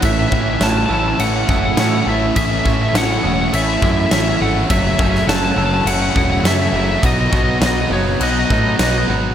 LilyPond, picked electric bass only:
\new Staff \with { instrumentName = "Picked electric bass" } { \clef bass \time 4/4 \key a \lydian \tempo 4 = 103 a,,8 a,,8 a,,8 a,,8 a,,8 fis,,8 a,8 a,,8 | a,,8 a,,8 a,,8 e,,8 a,,8 fis,8 a,,8 gis,,8 | fis,,8 fis,,8 fis,,8 fis,,8 fis,,8 e,,8 fis,8 fis,,8 | b,,8 b,,8 b,,8 fis,,8 b,,8 a,8 b,,8 gis,,8 | }